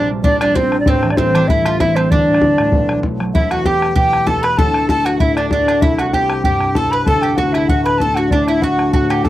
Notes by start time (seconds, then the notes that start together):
Already playing: A#1 A#2 A#3 C4 E4
0.10 G3
0.23 A#3 D4 D5, bodhran
0.40 G3 D4 D5, bodhran
0.55 C4 D4 C5, bodhran
0.72 A#3, bodhran
0.80 D5
0.85 A1 A2 C4 D5, bodhran
0.90 C5
0.94 bodhran
1.03 E3, bodhran
1.10 D5, bodhran
1.17 G3 C4 C5, bodhran
1.34 E3 D4, bodhran
1.48 G3 E4 E5, bodhran
1.66 E3 F4, bodhran
1.79 C4 E4 E5, bodhran
1.96 G3 C4 C5, bodhran
2.10 D1 D2 D4 D5, bodhran
2.20 bodhran
2.28 A2
2.34 bodhran
2.41 D3, bodhran
2.58 A2, bodhran
2.72 B1 B2, bodhran
2.88 F#3, bodhran
3.03 A3, bodhran
3.20 F#3, bodhran
3.34 E1 E2 E4 E5, bodhran
3.51 F#4 F#5, bodhran
3.62 B3 E4 G4 G5, bodhran
3.68 G4
3.82 bodhran
3.96 B2 G4 G5, bodhran
4.13 bodhran
4.25 B3 E4 A4 A5, bodhran
4.29 G4
4.36 bodhran
4.42 B4 B5, bodhran
4.57 D1 D2 A4 A5, bodhran
4.74 bodhran
4.89 A3 D4 F#4 A4 A5, bodhran
5.05 F#4 F#5, bodhran
5.19 A2 E4 E5, bodhran
5.36 D4 D5, bodhran
5.50 A3 D4 F#4 D5, bodhran
5.60 bodhran
5.68 D4, bodhran
5.81 C2 E4 E5, bodhran
5.98 F#4 F#5, bodhran
6.13 C4 E4 G4 G5, bodhran
6.30 bodhran
6.42 G2 G4 G5, bodhran
6.61 bodhran
6.74 C4 E4 G4 A4 A5, bodhran
6.84 bodhran
6.91 B4 B5, bodhran
7.05 D1 D2 A4 A5, bodhran
7.22 G4 G5, bodhran
7.36 A3 D4 F#4 F#5, bodhran
7.53 E4 E5, bodhran
7.67 A2 F#4 F#5, bodhran
7.84 B4 B5, bodhran
7.98 A3 D4 F#4 A4 A5, bodhran
8.08 bodhran
8.15 F#4 F#5, bodhran
8.30 D1 D2 D4 D5, bodhran
8.47 E4 E5, bodhran
8.61 A3 D4 F#4 F#5, bodhran
8.79 bodhran
8.92 A2 F#4 F#5 A5, bodhran
9.10 G4, bodhran
9.24 A3 D4 F#4 A4 A5, bodhran